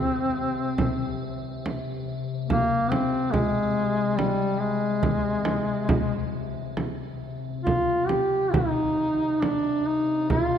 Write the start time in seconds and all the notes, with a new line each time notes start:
Already playing: C3 C4
0.78 frame drum
1.66 frame drum
2.48 A#3, frame drum
2.91 C4, frame drum
3.32 G#3, frame drum
4.16 G3, frame drum
4.60 G#3
5.03 frame drum
5.45 frame drum
5.89 frame drum
6.77 frame drum
7.64 C3 F4, frame drum
8.08 G4, frame drum
8.53 D#4, frame drum
9.41 D4, frame drum
9.87 D#4
10.30 F4, frame drum